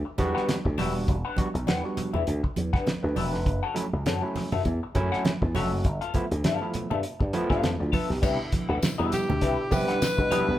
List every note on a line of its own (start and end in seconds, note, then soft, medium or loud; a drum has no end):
0.05 muted clean electric guitar stroke soft
0.18 0.32 E2 medium
0.18 0.55 G3 loud
0.18 0.55 B3 loud
0.18 0.55 D4 loud
0.18 0.55 F#4 loud
0.18 kick medium
0.18 closed hi-hat medium
0.18 muted conga soft
0.18 high conga medium
0.35 0.47 D4 medium
0.35 0.47 G4 medium
0.35 0.47 B4 medium
0.35 0.46 F#5 medium
0.35 snare soft
0.48 snare loud
0.48 closed hi-hat medium
0.48 muted conga soft
0.48 high conga medium
0.65 0.76 D2 medium
0.65 muted clean electric guitar stroke soft
0.65 kick medium
0.78 0.95 E1 medium
0.78 1.14 G3 medium
0.78 1.15 B3 medium
0.78 0.92 D4 medium
0.78 1.15 D4 medium
0.78 1.15 F#4 medium
0.78 0.93 G4 medium
0.78 0.93 B4 medium
0.78 0.93 E5 medium
0.78 snare soft
0.78 open hi-hat medium
0.78 muted conga soft
0.78 high conga medium
0.78 low conga medium
0.94 1.06 D#1 medium
0.94 muted clean electric guitar stroke soft
1.08 1.22 E1 loud
1.08 muted clean electric guitar stroke soft
1.08 kick loud
1.08 closed hi-hat medium
1.08 muted conga soft
1.25 1.37 D4 medium
1.25 1.36 G4 medium
1.25 1.36 B4 medium
1.25 1.36 F#5 medium
1.36 1.47 G3 medium
1.36 1.47 B3 medium
1.36 1.48 D4 medium
1.36 1.48 F#4 loud
1.36 kick loud
1.36 closed hi-hat medium
1.36 muted conga soft
1.36 high conga medium
1.54 1.65 B1 medium
1.54 1.60 D4 soft
1.54 1.61 F#4 soft
1.54 muted clean electric guitar stroke soft
1.54 closed hi-hat medium
1.67 1.81 E2 medium
1.67 1.75 D4 soft
1.67 1.82 D4 medium
1.67 1.82 G4 medium
1.67 1.76 A4 soft
1.67 1.82 B4 medium
1.67 1.82 F#5 medium
1.67 snare loud
1.67 closed hi-hat medium
1.67 muted conga soft
1.67 high conga medium
1.83 2.10 G3 medium
1.83 2.10 B3 medium
1.83 2.11 D4 medium
1.83 2.11 F#4 medium
1.97 muted clean electric guitar stroke soft
1.97 muted slap bass stroke soft
1.97 closed hi-hat medium
1.97 muted conga soft
1.97 high conga medium
1.97 low conga medium
2.13 2.25 E2 medium
2.13 2.23 D4 medium
2.13 2.23 G4 medium
2.13 2.23 B4 medium
2.13 2.23 E5 medium
2.13 low conga medium
2.26 2.41 D2 medium
2.26 2.35 D4 soft
2.26 2.35 A4 soft
2.26 muted clean electric guitar stroke soft
2.26 closed hi-hat medium
2.26 muted conga soft
2.44 muted clean electric guitar stroke soft
2.44 kick medium
2.56 2.70 E2 medium
2.56 closed hi-hat medium
2.56 muted conga soft
2.56 high conga medium
2.73 2.85 D4 medium
2.73 2.85 G4 medium
2.73 2.85 B4 medium
2.73 2.85 F#5 medium
2.73 kick loud
2.73 snare soft
2.87 snare loud
2.87 closed hi-hat medium
2.87 high conga medium
3.03 3.14 D2 loud
3.03 3.16 D4 medium
3.03 3.16 B4 medium
3.03 muted clean electric guitar stroke soft
3.16 3.33 E1 medium
3.16 3.31 D4 medium
3.16 3.32 F#4 medium
3.16 3.31 G4 medium
3.16 3.31 B4 medium
3.16 3.32 D5 medium
3.16 3.32 E5 medium
3.16 open hi-hat medium
3.16 high conga medium
3.16 low conga medium
3.33 3.46 F1 medium
3.33 3.62 D4 medium
3.33 3.61 B4 medium
3.33 muted clean electric guitar stroke soft
3.33 snare soft
3.46 3.60 F#1 medium
3.46 muted clean electric guitar stroke soft
3.46 kick loud
3.46 closed hi-hat medium
3.46 muted conga soft
3.63 3.75 C#4 medium
3.63 3.75 F#4 medium
3.63 3.75 A4 medium
3.63 3.74 F#5 medium
3.74 3.85 F#3 loud
3.74 3.86 A3 medium
3.74 3.86 C#4 medium
3.74 3.86 E4 loud
3.74 muted clean electric guitar stroke soft
3.74 closed hi-hat medium
3.74 high conga medium
3.92 4.03 C#2 medium
3.92 3.99 C#4 soft
3.92 3.99 E4 soft
3.92 muted clean electric guitar stroke soft
4.05 4.19 F#2 medium
4.05 4.13 C#4 soft
4.05 4.21 C#4 medium
4.05 4.14 E4 soft
4.05 4.21 F#4 medium
4.05 4.21 A4 medium
4.05 4.21 F#5 medium
4.05 snare loud
4.05 closed hi-hat loud
4.05 muted conga soft
4.05 high conga medium
4.22 4.48 F#3 medium
4.22 4.49 A3 medium
4.22 4.49 C#4 medium
4.22 4.49 E4 loud
4.36 muted slap bass stroke soft
4.36 muted clean electric guitar stroke soft
4.36 snare soft
4.36 open hi-hat medium
4.36 muted conga soft
4.36 high conga medium
4.36 low conga medium
4.52 4.63 F#2 medium
4.52 4.62 C#4 medium
4.52 4.62 F#4 medium
4.52 4.62 A4 medium
4.52 4.61 E5 medium
4.52 low conga medium
4.65 4.79 E2 loud
4.65 4.73 C#4 soft
4.65 4.74 E4 soft
4.65 muted clean electric guitar stroke soft
4.65 kick medium
4.65 closed hi-hat medium
4.65 muted conga soft
4.83 muted clean electric guitar stroke medium
4.95 5.09 F#2 medium
4.95 5.31 F#3 loud
4.95 5.32 A3 loud
4.95 5.32 C#4 loud
4.95 5.32 E4 loud
4.95 kick medium
4.95 closed hi-hat medium
4.95 muted conga soft
4.95 high conga medium
5.12 5.24 C#4 medium
5.12 5.24 F#4 medium
5.12 5.24 A4 medium
5.12 5.23 F#5 medium
5.12 snare soft
5.25 snare loud
5.25 closed hi-hat medium
5.25 muted conga soft
5.25 high conga medium
5.42 5.52 E2 medium
5.42 muted clean electric guitar stroke soft
5.42 kick medium
5.54 5.71 F1 medium
5.54 5.84 F#3 medium
5.54 5.84 A3 medium
5.54 5.85 C#4 medium
5.54 5.70 C#4 medium
5.54 5.85 F#4 loud
5.54 5.70 F#4 medium
5.54 5.70 A4 medium
5.54 5.70 E5 medium
5.54 snare soft
5.54 open hi-hat medium
5.54 muted conga soft
5.54 high conga medium
5.54 low conga medium
5.71 5.82 F#1 medium
5.71 muted clean electric guitar stroke soft
5.84 5.98 G1 medium
5.84 muted clean electric guitar stroke soft
5.84 kick loud
5.84 closed hi-hat medium
5.84 muted conga soft
6.01 6.13 B3 medium
6.01 6.13 F4 medium
6.01 6.13 A4 medium
6.01 6.13 F5 medium
6.01 closed hi-hat soft
6.14 6.24 F3 medium
6.14 6.25 A3 medium
6.14 6.25 B3 medium
6.14 6.25 E4 loud
6.14 muted clean electric guitar stroke soft
6.14 kick loud
6.14 closed hi-hat medium
6.14 muted conga soft
6.14 high conga medium
6.31 6.42 D2 medium
6.31 6.37 B3 soft
6.31 6.38 E4 soft
6.31 muted clean electric guitar stroke soft
6.31 closed hi-hat medium
6.44 6.58 G2 medium
6.44 6.52 B3 soft
6.44 6.66 B3 medium
6.44 6.66 F4 medium
6.44 6.53 G4 soft
6.44 6.66 A4 medium
6.44 6.66 F5 medium
6.44 snare loud
6.44 closed hi-hat medium
6.44 muted conga soft
6.44 high conga medium
6.61 6.87 F3 medium
6.61 6.87 A3 medium
6.61 6.88 B3 medium
6.61 6.88 E4 medium
6.74 muted clean electric guitar stroke soft
6.74 muted slap bass stroke soft
6.74 closed hi-hat medium
6.74 muted conga soft
6.74 high conga medium
6.74 low conga medium
6.90 7.01 G2 medium
6.90 7.00 B3 medium
6.90 7.00 F4 medium
6.90 7.00 A4 medium
6.90 6.99 E5 medium
6.90 low conga medium
7.03 7.12 B3 soft
7.03 7.12 E4 soft
7.03 muted clean electric guitar stroke soft
7.03 closed hi-hat medium
7.20 7.31 G2 medium
7.20 muted clean electric guitar stroke soft
7.20 kick loud
7.33 7.70 F3 loud
7.33 7.70 A3 loud
7.33 7.64 B3 loud
7.33 7.64 E4 loud
7.33 closed hi-hat medium
7.33 high conga medium
7.50 7.61 G2 medium
7.50 7.70 B3 medium
7.50 7.69 F4 medium
7.50 7.69 A4 medium
7.50 7.69 F5 medium
7.50 kick loud
7.50 snare soft
7.63 7.77 F2 loud
7.63 snare loud
7.63 closed hi-hat medium
7.63 muted conga soft
7.63 high conga medium
7.79 7.91 D2 medium
7.79 7.93 F4 medium
7.79 7.92 D5 medium
7.79 muted clean electric guitar stroke soft
7.92 8.07 B3 medium
7.92 8.09 D4 medium
7.92 8.07 F4 medium
7.92 8.08 A4 medium
7.92 8.09 B4 medium
7.92 8.08 E5 medium
7.92 kick medium
7.92 open hi-hat medium
7.92 muted conga soft
7.92 high conga medium
7.92 low conga medium
8.10 8.20 B1 medium
8.10 8.39 B3 medium
8.10 8.38 G4 medium
8.10 muted clean electric guitar stroke soft
8.10 snare soft
8.22 8.36 C2 loud
8.22 10.59 B2 medium
8.22 10.59 D3 medium
8.22 8.37 D4 medium
8.22 10.59 E4 medium
8.22 8.37 G4 medium
8.22 8.37 B4 medium
8.22 8.38 E5 medium
8.22 kick loud
8.22 crash loud
8.22 tambourine medium
8.22 muted conga soft
8.52 muted clean electric guitar stroke soft
8.52 kick loud
8.52 closed hi-hat medium
8.52 high conga medium
8.69 8.80 D2 medium
8.69 8.79 D4 medium
8.69 8.79 G4 soft
8.69 8.78 B4 medium
8.69 8.78 F#5 medium
8.82 muted clean electric guitar stroke soft
8.82 muted slap bass stroke soft
8.82 snare loud
8.82 closed hi-hat medium
8.82 tambourine loud
8.82 muted conga soft
8.82 high conga medium
8.98 9.10 E2 medium
8.98 9.25 G3 medium
8.98 9.26 B3 medium
8.98 9.26 D4 medium
8.98 9.11 D4 medium
8.98 9.26 E4 medium
8.98 9.11 G4 medium
8.98 9.12 B4 medium
8.98 9.12 E5 medium
9.12 9.74 G4 loud
9.12 muted clean electric guitar stroke soft
9.12 snare soft
9.12 closed hi-hat medium
9.12 tambourine medium
9.12 high conga medium
9.12 low conga medium
9.29 9.42 D2 medium
9.29 muted clean electric guitar stroke medium
9.29 low conga medium
9.41 9.55 C2 loud
9.41 9.56 D4 medium
9.41 9.50 D4 soft
9.41 9.51 E4 soft
9.41 9.56 G4 loud
9.41 9.57 B4 loud
9.41 9.57 E5 medium
9.41 kick medium
9.41 closed hi-hat medium
9.41 muted conga soft
9.71 9.85 C3 loud
9.71 9.98 G3 loud
9.71 9.98 B3 medium
9.71 9.99 D4 medium
9.71 9.99 G4 loud
9.71 10.59 B4 loud
9.71 muted clean electric guitar stroke soft
9.71 kick medium
9.71 open hi-hat medium
9.71 tambourine medium
9.71 muted conga soft
9.71 high conga medium
9.88 9.98 D4 medium
9.88 9.98 G4 medium
9.88 9.97 B4 medium
9.88 9.97 F#5 medium
9.88 snare soft
9.88 closed hi-hat medium
10.02 muted slap bass stroke soft
10.02 snare loud
10.02 closed hi-hat loud
10.02 tambourine loud
10.02 high conga medium
10.18 10.29 B2 medium
10.18 10.26 G3 medium
10.18 10.26 B3 medium
10.18 10.26 D4 medium
10.18 10.27 E4 medium
10.18 muted clean electric guitar stroke soft
10.18 kick medium
10.31 10.59 G3 loud
10.31 10.59 B3 medium
10.31 10.52 D4 medium
10.31 10.59 D4 loud
10.31 10.59 E4 loud
10.31 10.47 G4 medium
10.31 10.47 B4 medium
10.31 10.46 E5 medium
10.31 snare soft
10.31 closed hi-hat medium
10.31 tambourine medium
10.31 high conga medium
10.31 low conga medium
10.48 10.59 B1 medium
10.48 muted clean electric guitar stroke medium